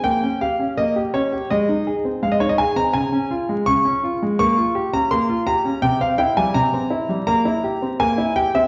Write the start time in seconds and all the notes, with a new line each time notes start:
0.04 A#3 G5
0.22 C#4
0.41 G4 F5
0.59 C#4
0.78 A#3 D#5
0.96 G4
1.14 C#4 C#5
1.32 G4
1.50 G#3 D#5
1.69 D#4
1.87 G#4
2.05 C4
2.22 G#3 F5
2.32 D#5
2.40 D#4 C#5
2.49 D#5
2.58 G#4 G#5
2.76 C4 A#5
2.94 C#3 G#5
3.12 C#4
3.31 F4
3.49 G#3
3.66 C#3 C#6
3.85 C#4
4.04 F4
4.22 G#3
4.39 A#3 C#6
4.58 F4
4.75 G4
4.93 C#4 A#5
5.11 A#3 C6
5.29 F4
5.47 G4 A#5
5.65 C#4
5.82 C3 G5
6.01 C4 F5
6.18 E4 G5
6.37 G3 G#5
6.54 C3 A#5
6.74 C4
6.90 E4
7.09 G3
7.27 A#3 A#5
7.45 E4
7.64 G4
7.82 C4
8.00 A#3 G#5
8.18 E4
8.36 G4 G5
8.54 C4 E5